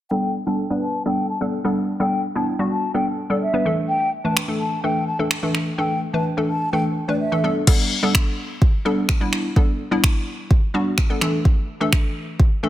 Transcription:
0.11 G3 B3 D4 A4 G5
0.47 G3 B3 D4 A4 A5
0.70 G3 B3 D4 B4
0.82 A5
1.06 G3 B3 D4 A4 G5
1.29 A5
1.41 G3 B3 D4 A4
1.64 G3 B3 D4 A4
2.00 G3 B3 D4 A4 G5
2.35 G3 B3 D4 E4 A5
2.59 G3 B3 D4 F#4
2.71 A5
2.94 G3 B3 D4 A4 G5
3.30 G3 B3 D4 A4 D5
3.42 E5
3.53 G3 B3 D4 B4
3.65 E3 A3 D4 A4
3.89 G5
4.24 E3 A3 D4 B4 A5
4.37 finger snap
4.48 E3 A3 D4 A4
4.60 A5
4.83 E3 A3 D4 A4 G5
5.07 A5
5.19 E3 A3 D4 A4
5.31 finger snap
5.43 E3 A3 D4 A4
5.55 finger snap
5.78 E3 A3 D4 A4 G5
6.13 E3 A3 D4 B4 A5
6.37 E3 A3 D4 A4
6.49 A5
6.73 E3 A3 D4 A4 G5
7.08 E3 A3 D4 B4 D5
7.20 E5
7.32 E3 A3 D4 A4
7.44 G3 B3 D4 A4
7.67 G3 B3 D4 A4, kick, crash
8.03 G3 B3 D4 A4
8.15 finger snap, kick
8.62 kick
8.85 G3 B3 D4 A4
9.09 finger snap, kick
9.21 G3 B3 D4 E4
9.33 finger snap
9.56 G3 B3 D4 A4, kick
9.91 G3 B3 D4 E4
10.04 finger snap, kick
10.51 kick
10.74 G3 B3 D4 F#4
10.98 finger snap, kick
11.10 G3 B3 D4 A4
11.21 E3 A3 D4 A4, finger snap
11.45 kick
11.81 E3 A3 D4 A4
11.93 finger snap, kick
12.40 kick
12.63 E3 A3 D4 A4

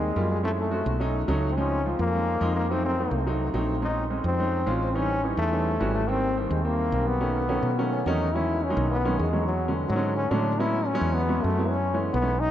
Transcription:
Already playing: D#2 G#3
0.16 F#2 G3 A#3 C4 F4
0.31 G#3
0.43 G#3 A3 C#4 E4
0.60 A3
0.71 G#3 A3 C#4 F#4
0.86 B1
1.00 F#3 A3 C#4 D#4
1.28 C#2 F#3 A3 C#4 D#4
1.50 C4
1.57 F3 G#3 C4 C#4 D#4
1.86 F3 G#3 C4 F4
1.99 F2 A#3
2.14 F3 G#3 C4 D#4
2.41 F2 F3 G#3 C4 D#4
2.56 A#3
2.70 F#3 A3 C4 D#4
2.85 C4
2.99 F#3 A3 C4 D#4
3.11 C2
3.26 F#3 A3 C4 D#4
3.54 A#1 F#3 A3 C4 D#4
3.82 G#3 C4 C#4 D#4
4.10 G#3 C4 C#4 D#4
4.24 F2 C4
4.40 G#3 C4 C#4 D#4
4.66 A1 G#3 C4 C#4 F4
4.83 C4
4.94 E3 G3 C#4 D#4
5.24 E3 G3 C#4 D#4
5.37 E2 A3
5.52 E3 G3 C#4 D#4
5.80 G#1 E3 G3 C#4 F#4
5.94 A3
6.08 D#3 G3 A#3 C4
6.37 D#3 G3 A#3 C4
6.50 D#2 G#3
6.64 D#3 G3 A#3 C4
6.92 B1 D#3 G3 A#3 C4
7.08 B3
7.20 D#3 F#3 A3 C#4
7.49 D#3 F#3 A3 C#4
7.62 B2
7.78 D#3 F#3 A3 C#4
7.93 C#4
8.06 E2 D#3 F#3 A3 C#4 D#4
8.34 D#3 F#3 G#3 C#4 E4
8.63 C#4
8.69 D#3 F#3 G#3 D#4
8.77 B1
8.91 B3
9.05 D#3 F#3 G#3 C#4
9.19 E2 G#3
9.33 D#3 F#3 G#3 C#4
9.46 F#3
9.68 D3 F#3 G#3 C#4
9.88 G#2 F#3
9.95 D3 F#3 G#3 C#4
10.16 C#4
10.30 A2 D3 F#3 G#3 C#4 D4
10.59 F#3 G#3 B3 C#4 E4
10.86 C#4
10.94 F#3 G#3 B3 C#4
11.01 E2
11.14 B3
11.28 F#3 G#3 B3 C#4
11.44 F#2 A3
11.58 F#3 G#3 B3 E4
11.70 C#4
11.94 E3 G#3 A3 C#4
12.12 B1 B3
12.21 E3 G#3 A3 C#4
12.40 D#4

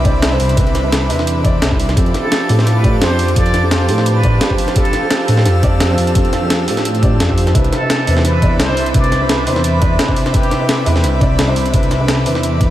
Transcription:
Already playing: C2 C4 E5 B5 D6
0.04 C3 C4 D4 E4 D5, kick, closed hi-hat
0.22 snare, closed hi-hat
0.31 C3 C4 D4 E4 C5
0.40 C2, open hi-hat
0.49 closed hi-hat
0.56 C3 C4 D4 E4 B4, kick, closed hi-hat
0.67 closed hi-hat
0.75 snare, closed hi-hat
0.83 C3 C4 D4 E4 B4
0.92 snare, closed hi-hat
1.09 E2 C3 C4 D4 E4 B4, open hi-hat
1.19 snare
1.27 closed hi-hat
1.44 C3 C4 D4 E4 D5, kick, closed hi-hat
1.62 C2, snare, closed hi-hat
1.71 C3 C4 D4 E4 C5, kick
1.80 open hi-hat
1.89 snare, closed hi-hat
1.96 F2 F3 C4 D4 G4 A4 F5 A5 D6, kick, closed hi-hat
2.06 closed hi-hat
2.14 A4, snare, closed hi-hat
2.23 F3 C4 D4 G4 A4
2.32 snare, closed hi-hat
2.48 A2 F3 C4 D4 G4 A4, open hi-hat
2.59 C5, snare
2.67 B4, snare, closed hi-hat
2.83 F3 C4 D4 G4 D5, kick, closed hi-hat
3.02 F2 C5, snare, closed hi-hat
3.10 F3 C4 D4 G4 C5
3.19 open hi-hat
3.28 closed hi-hat
3.36 F3 C4 D4 G4 A4 D5, kick, closed hi-hat
3.46 closed hi-hat
3.54 snare, closed hi-hat
3.62 F3 C4 D4 G4 A4
3.71 C5, snare, closed hi-hat
3.88 A2 F3 C4 D4 G4 A4 C5, open hi-hat
3.98 snare
4.06 B4, closed hi-hat
4.23 F3 C4 D4 G4 D5, kick, closed hi-hat
4.41 snare, closed hi-hat
4.49 F3 C4 D4 G4 C5, kick
4.58 open hi-hat
4.68 snare, closed hi-hat
4.75 F3 C4 D4 G4 A4 E6, kick, closed hi-hat
4.85 closed hi-hat
4.93 snare, closed hi-hat
5.02 F3 C4 D4 G4 A4
5.11 snare, closed hi-hat
5.27 A2 F3 C4 D4 G4 A4, open hi-hat
5.37 snare
5.46 F2, snare, closed hi-hat
5.62 F3 C4 D4 G4 D5, kick, closed hi-hat
5.80 snare, closed hi-hat
5.89 F3 C4 D4 G4 C5
5.98 F2, open hi-hat
6.07 closed hi-hat
6.15 F3 C4 D4 G4 A4, kick, closed hi-hat
6.25 closed hi-hat
6.33 snare, closed hi-hat
6.41 F3 C4 D4 G4 A4
6.50 snare, closed hi-hat
6.67 A2 F3 C4 D4 G4 A4, open hi-hat
6.77 snare, closed hi-hat
6.85 closed hi-hat
6.95 closed hi-hat
7.02 F3 C4 D4 G4 D5, kick, closed hi-hat
7.20 F2, snare, closed hi-hat
7.29 F3 C4 D4 G4 C5, kick
7.38 open hi-hat
7.47 snare, closed hi-hat
7.54 C2 C3 C4 D4 E4 B4 E5 B5 D6, kick, closed hi-hat
7.64 closed hi-hat
7.73 A4, snare, closed hi-hat
7.81 C3 C4 D4 E4 B4
7.90 snare, closed hi-hat
8.07 E2 C3 C4 D4 E4 B4, open hi-hat
8.17 snare
8.25 B4, snare, closed hi-hat
8.42 C3 C4 D4 E4 D5, kick, closed hi-hat
8.59 C2 C5, snare, closed hi-hat
8.68 C3 C4 D4 E4 C5
8.77 open hi-hat
8.86 closed hi-hat
8.94 C3 C4 D4 E4 B4 D5, kick, closed hi-hat
9.04 closed hi-hat
9.12 snare, closed hi-hat
9.20 C3 C4 D4 E4 B4
9.29 B4, snare, closed hi-hat
9.46 E2 C3 C4 D4 E4 B4 C5, open hi-hat
9.56 snare
9.64 B4, closed hi-hat
9.81 C3 C4 D4 E4 D5, kick, closed hi-hat
9.99 snare, closed hi-hat
10.08 C3 C4 D4 E4 C5, kick
10.16 open hi-hat
10.26 snare, closed hi-hat
10.33 C3 C4 D4 E4 G4 B4, kick, closed hi-hat
10.43 closed hi-hat
10.51 snare, closed hi-hat
10.60 C3 C4 D4 E4 B4
10.69 snare, closed hi-hat
10.86 E2 C3 C4 D4 E4 B4, open hi-hat
10.96 snare
11.04 C2, snare, closed hi-hat
11.20 C3 C4 D4 E4 D5, kick, closed hi-hat
11.39 snare, closed hi-hat
11.48 C3 C4 D4 E4 C5
11.56 C2, open hi-hat
11.66 closed hi-hat
11.73 C3 C4 D4 E4 B4, kick, closed hi-hat
11.83 closed hi-hat
11.91 snare, closed hi-hat
12.00 C3 C4 D4 E4 B4
12.08 snare, closed hi-hat
12.25 E2 C3 C4 D4 E4 B4, open hi-hat
12.35 snare
12.43 closed hi-hat
12.60 C3 C4 D4 E4 B4, kick, closed hi-hat

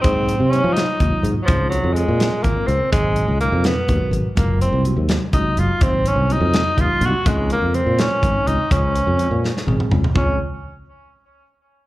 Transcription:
0.01 G#2 C3 F#3 G#3 A#3 C4 D#4, kick, closed hi-hat
0.29 closed hi-hat
0.40 C3
0.50 C3 F#3 G#3 A#3 C#4 D#4, closed hi-hat
0.64 F3
0.73 D#4, closed hi-hat
0.77 snare
1.00 D#2 C3 F#3 G#3 A#3 F4, kick, closed hi-hat
1.12 muted fretless electric bass stroke
1.23 G#2, closed hi-hat
1.42 F3 F#3
1.48 C#2 C#3 F3 G#3 C4 D#4, kick, closed hi-hat
1.69 F#3, closed hi-hat
1.84 F2
1.94 C#3 F3 G#3 C4, closed hi-hat
1.98 F4
2.08 A#2
2.20 snare, closed hi-hat
2.42 G#1 C#3 F3 G#3 A#3 C4, kick, closed hi-hat
2.46 F4
2.56 muted fretless electric bass stroke
2.66 C#2 C4, closed hi-hat
2.91 G#1 B2 F#3 G#3 A#3 D#4, kick, closed hi-hat
3.16 closed hi-hat
3.28 C#2
3.40 B2 F#3 G#3 A#3 D#4, closed hi-hat
3.52 F2
3.64 B3, snare, closed hi-hat
3.87 D#2 B2 F#3 G#3 F#4 A#4, kick, closed hi-hat
4.00 muted fretless electric bass stroke
4.11 G#1, closed hi-hat
4.36 F#1 C3 F#3 G#3 A#3 F4, kick, closed hi-hat
4.61 C4, closed hi-hat
4.73 C2
4.83 C3 F#3 G#3 A#3 F#4, closed hi-hat
4.97 D#2
5.09 snare, closed hi-hat
5.32 C#2 C3 F#3 G#3 A#3 D#4 F#4, kick, closed hi-hat
5.45 muted fretless electric bass stroke
5.57 F#1 F4, closed hi-hat
5.79 G#1 C3 F#3 G#3 A#3 C4 D#4, kick, closed hi-hat
6.06 C#4, closed hi-hat
6.16 C2
6.28 C3 F#3 G#3 A#3 D#4 F#4, closed hi-hat
6.40 F2
6.54 snare, closed hi-hat
6.76 D#2 C3 F#3 G#3 A#3 D#4 F4, kick, closed hi-hat
6.90 muted fretless electric bass stroke
7.01 C2 F#4, closed hi-hat
7.25 C#2 C#3 F3 G#3 C4 D#4, kick, closed hi-hat
7.50 A#3, closed hi-hat
7.62 F2
7.73 C#3 F3 G#3 C4 F4, closed hi-hat
7.87 A#2
7.99 C#4, snare, closed hi-hat
8.21 G#1 C#3 F3 G#3 C4 D#4, kick, closed hi-hat
8.35 muted fretless electric bass stroke
8.47 C#2 D#4, closed hi-hat
8.71 C#2 C#3 F3 G#3 C#4 F4 C5, kick, closed hi-hat
8.96 closed hi-hat
9.07 F2
9.18 C#3 F3 G#3 F4 C5, closed hi-hat
9.31 A#2
9.44 snare
9.57 snare
9.66 G#1 C#3 F3 G#3 C4 G#4, high tom
9.80 muted fretless electric bass stroke, mid tom
9.91 C#2, mid tom
10.04 floor tom
10.14 C#2 C#3 F3 G#3 C4 C#4 F4, kick, floor tom

